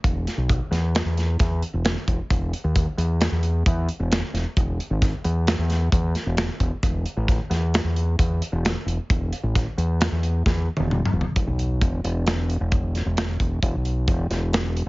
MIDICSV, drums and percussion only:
0, 0, Header, 1, 2, 480
1, 0, Start_track
1, 0, Tempo, 453172
1, 37, Time_signature, 5, 2, 24, 8
1, 15767, End_track
2, 0, Start_track
2, 0, Title_t, "Drums"
2, 44, Note_on_c, 9, 36, 106
2, 46, Note_on_c, 9, 42, 95
2, 150, Note_off_c, 9, 36, 0
2, 152, Note_off_c, 9, 42, 0
2, 289, Note_on_c, 9, 42, 69
2, 298, Note_on_c, 9, 38, 36
2, 395, Note_off_c, 9, 42, 0
2, 404, Note_off_c, 9, 38, 0
2, 523, Note_on_c, 9, 42, 94
2, 525, Note_on_c, 9, 36, 110
2, 629, Note_off_c, 9, 42, 0
2, 630, Note_off_c, 9, 36, 0
2, 769, Note_on_c, 9, 42, 70
2, 778, Note_on_c, 9, 38, 36
2, 875, Note_off_c, 9, 42, 0
2, 884, Note_off_c, 9, 38, 0
2, 1006, Note_on_c, 9, 42, 97
2, 1016, Note_on_c, 9, 38, 114
2, 1112, Note_off_c, 9, 42, 0
2, 1121, Note_off_c, 9, 38, 0
2, 1244, Note_on_c, 9, 42, 67
2, 1254, Note_on_c, 9, 38, 35
2, 1350, Note_off_c, 9, 42, 0
2, 1359, Note_off_c, 9, 38, 0
2, 1477, Note_on_c, 9, 42, 92
2, 1482, Note_on_c, 9, 36, 119
2, 1487, Note_on_c, 9, 38, 38
2, 1583, Note_off_c, 9, 42, 0
2, 1588, Note_off_c, 9, 36, 0
2, 1593, Note_off_c, 9, 38, 0
2, 1721, Note_on_c, 9, 42, 64
2, 1827, Note_off_c, 9, 42, 0
2, 1956, Note_on_c, 9, 42, 78
2, 1966, Note_on_c, 9, 38, 104
2, 2062, Note_off_c, 9, 42, 0
2, 2072, Note_off_c, 9, 38, 0
2, 2200, Note_on_c, 9, 42, 74
2, 2201, Note_on_c, 9, 36, 73
2, 2306, Note_off_c, 9, 42, 0
2, 2307, Note_off_c, 9, 36, 0
2, 2441, Note_on_c, 9, 36, 112
2, 2441, Note_on_c, 9, 42, 83
2, 2547, Note_off_c, 9, 36, 0
2, 2547, Note_off_c, 9, 42, 0
2, 2684, Note_on_c, 9, 42, 67
2, 2790, Note_off_c, 9, 42, 0
2, 2919, Note_on_c, 9, 42, 101
2, 2920, Note_on_c, 9, 36, 106
2, 3025, Note_off_c, 9, 42, 0
2, 3026, Note_off_c, 9, 36, 0
2, 3161, Note_on_c, 9, 42, 70
2, 3267, Note_off_c, 9, 42, 0
2, 3396, Note_on_c, 9, 42, 93
2, 3406, Note_on_c, 9, 38, 102
2, 3502, Note_off_c, 9, 42, 0
2, 3512, Note_off_c, 9, 38, 0
2, 3633, Note_on_c, 9, 42, 62
2, 3739, Note_off_c, 9, 42, 0
2, 3878, Note_on_c, 9, 36, 117
2, 3882, Note_on_c, 9, 42, 104
2, 3984, Note_off_c, 9, 36, 0
2, 3988, Note_off_c, 9, 42, 0
2, 4116, Note_on_c, 9, 42, 68
2, 4222, Note_off_c, 9, 42, 0
2, 4360, Note_on_c, 9, 42, 97
2, 4370, Note_on_c, 9, 38, 109
2, 4466, Note_off_c, 9, 42, 0
2, 4476, Note_off_c, 9, 38, 0
2, 4605, Note_on_c, 9, 42, 71
2, 4614, Note_on_c, 9, 38, 37
2, 4711, Note_off_c, 9, 42, 0
2, 4720, Note_off_c, 9, 38, 0
2, 4839, Note_on_c, 9, 36, 112
2, 4843, Note_on_c, 9, 42, 90
2, 4945, Note_off_c, 9, 36, 0
2, 4949, Note_off_c, 9, 42, 0
2, 5086, Note_on_c, 9, 42, 61
2, 5192, Note_off_c, 9, 42, 0
2, 5316, Note_on_c, 9, 42, 90
2, 5317, Note_on_c, 9, 36, 109
2, 5325, Note_on_c, 9, 38, 34
2, 5422, Note_off_c, 9, 42, 0
2, 5423, Note_off_c, 9, 36, 0
2, 5431, Note_off_c, 9, 38, 0
2, 5556, Note_on_c, 9, 42, 64
2, 5662, Note_off_c, 9, 42, 0
2, 5796, Note_on_c, 9, 42, 91
2, 5806, Note_on_c, 9, 38, 108
2, 5902, Note_off_c, 9, 42, 0
2, 5912, Note_off_c, 9, 38, 0
2, 6036, Note_on_c, 9, 42, 60
2, 6045, Note_on_c, 9, 38, 38
2, 6142, Note_off_c, 9, 42, 0
2, 6151, Note_off_c, 9, 38, 0
2, 6274, Note_on_c, 9, 36, 113
2, 6276, Note_on_c, 9, 42, 94
2, 6379, Note_off_c, 9, 36, 0
2, 6381, Note_off_c, 9, 42, 0
2, 6515, Note_on_c, 9, 42, 60
2, 6524, Note_on_c, 9, 38, 32
2, 6621, Note_off_c, 9, 42, 0
2, 6630, Note_off_c, 9, 38, 0
2, 6750, Note_on_c, 9, 42, 86
2, 6760, Note_on_c, 9, 38, 116
2, 6856, Note_off_c, 9, 42, 0
2, 6866, Note_off_c, 9, 38, 0
2, 6993, Note_on_c, 9, 36, 83
2, 6997, Note_on_c, 9, 42, 71
2, 7099, Note_off_c, 9, 36, 0
2, 7103, Note_off_c, 9, 42, 0
2, 7234, Note_on_c, 9, 36, 108
2, 7236, Note_on_c, 9, 42, 89
2, 7340, Note_off_c, 9, 36, 0
2, 7342, Note_off_c, 9, 42, 0
2, 7474, Note_on_c, 9, 42, 65
2, 7580, Note_off_c, 9, 42, 0
2, 7714, Note_on_c, 9, 36, 108
2, 7720, Note_on_c, 9, 42, 98
2, 7730, Note_on_c, 9, 38, 33
2, 7820, Note_off_c, 9, 36, 0
2, 7826, Note_off_c, 9, 42, 0
2, 7836, Note_off_c, 9, 38, 0
2, 7955, Note_on_c, 9, 42, 80
2, 7964, Note_on_c, 9, 38, 38
2, 8061, Note_off_c, 9, 42, 0
2, 8070, Note_off_c, 9, 38, 0
2, 8199, Note_on_c, 9, 42, 102
2, 8209, Note_on_c, 9, 38, 120
2, 8305, Note_off_c, 9, 42, 0
2, 8315, Note_off_c, 9, 38, 0
2, 8435, Note_on_c, 9, 42, 69
2, 8541, Note_off_c, 9, 42, 0
2, 8675, Note_on_c, 9, 42, 101
2, 8676, Note_on_c, 9, 36, 117
2, 8781, Note_off_c, 9, 42, 0
2, 8782, Note_off_c, 9, 36, 0
2, 8918, Note_on_c, 9, 42, 70
2, 9024, Note_off_c, 9, 42, 0
2, 9162, Note_on_c, 9, 42, 97
2, 9171, Note_on_c, 9, 38, 102
2, 9268, Note_off_c, 9, 42, 0
2, 9277, Note_off_c, 9, 38, 0
2, 9406, Note_on_c, 9, 42, 70
2, 9512, Note_off_c, 9, 42, 0
2, 9639, Note_on_c, 9, 36, 118
2, 9640, Note_on_c, 9, 42, 93
2, 9745, Note_off_c, 9, 36, 0
2, 9746, Note_off_c, 9, 42, 0
2, 9878, Note_on_c, 9, 42, 74
2, 9984, Note_off_c, 9, 42, 0
2, 10120, Note_on_c, 9, 36, 105
2, 10125, Note_on_c, 9, 42, 97
2, 10134, Note_on_c, 9, 38, 33
2, 10226, Note_off_c, 9, 36, 0
2, 10231, Note_off_c, 9, 42, 0
2, 10240, Note_off_c, 9, 38, 0
2, 10362, Note_on_c, 9, 42, 67
2, 10468, Note_off_c, 9, 42, 0
2, 10600, Note_on_c, 9, 42, 89
2, 10609, Note_on_c, 9, 38, 116
2, 10706, Note_off_c, 9, 42, 0
2, 10715, Note_off_c, 9, 38, 0
2, 10838, Note_on_c, 9, 42, 72
2, 10944, Note_off_c, 9, 42, 0
2, 11079, Note_on_c, 9, 36, 103
2, 11089, Note_on_c, 9, 38, 64
2, 11185, Note_off_c, 9, 36, 0
2, 11195, Note_off_c, 9, 38, 0
2, 11404, Note_on_c, 9, 48, 65
2, 11510, Note_off_c, 9, 48, 0
2, 11559, Note_on_c, 9, 47, 79
2, 11665, Note_off_c, 9, 47, 0
2, 11709, Note_on_c, 9, 45, 92
2, 11815, Note_off_c, 9, 45, 0
2, 11874, Note_on_c, 9, 43, 90
2, 11980, Note_off_c, 9, 43, 0
2, 12031, Note_on_c, 9, 42, 96
2, 12034, Note_on_c, 9, 36, 102
2, 12137, Note_off_c, 9, 42, 0
2, 12140, Note_off_c, 9, 36, 0
2, 12276, Note_on_c, 9, 42, 59
2, 12382, Note_off_c, 9, 42, 0
2, 12514, Note_on_c, 9, 36, 105
2, 12515, Note_on_c, 9, 42, 84
2, 12620, Note_off_c, 9, 36, 0
2, 12621, Note_off_c, 9, 42, 0
2, 12758, Note_on_c, 9, 42, 72
2, 12864, Note_off_c, 9, 42, 0
2, 12992, Note_on_c, 9, 42, 91
2, 13002, Note_on_c, 9, 38, 106
2, 13098, Note_off_c, 9, 42, 0
2, 13108, Note_off_c, 9, 38, 0
2, 13236, Note_on_c, 9, 42, 66
2, 13342, Note_off_c, 9, 42, 0
2, 13470, Note_on_c, 9, 42, 84
2, 13473, Note_on_c, 9, 36, 110
2, 13576, Note_off_c, 9, 42, 0
2, 13579, Note_off_c, 9, 36, 0
2, 13717, Note_on_c, 9, 42, 61
2, 13726, Note_on_c, 9, 38, 29
2, 13823, Note_off_c, 9, 42, 0
2, 13832, Note_off_c, 9, 38, 0
2, 13951, Note_on_c, 9, 42, 89
2, 13960, Note_on_c, 9, 38, 114
2, 14057, Note_off_c, 9, 42, 0
2, 14066, Note_off_c, 9, 38, 0
2, 14192, Note_on_c, 9, 42, 68
2, 14193, Note_on_c, 9, 36, 79
2, 14298, Note_off_c, 9, 42, 0
2, 14299, Note_off_c, 9, 36, 0
2, 14433, Note_on_c, 9, 36, 101
2, 14433, Note_on_c, 9, 42, 87
2, 14538, Note_off_c, 9, 36, 0
2, 14539, Note_off_c, 9, 42, 0
2, 14671, Note_on_c, 9, 42, 64
2, 14777, Note_off_c, 9, 42, 0
2, 14910, Note_on_c, 9, 42, 89
2, 14911, Note_on_c, 9, 36, 101
2, 15016, Note_off_c, 9, 42, 0
2, 15017, Note_off_c, 9, 36, 0
2, 15153, Note_on_c, 9, 42, 67
2, 15163, Note_on_c, 9, 38, 36
2, 15259, Note_off_c, 9, 42, 0
2, 15268, Note_off_c, 9, 38, 0
2, 15394, Note_on_c, 9, 42, 86
2, 15403, Note_on_c, 9, 38, 106
2, 15500, Note_off_c, 9, 42, 0
2, 15509, Note_off_c, 9, 38, 0
2, 15640, Note_on_c, 9, 42, 65
2, 15745, Note_off_c, 9, 42, 0
2, 15767, End_track
0, 0, End_of_file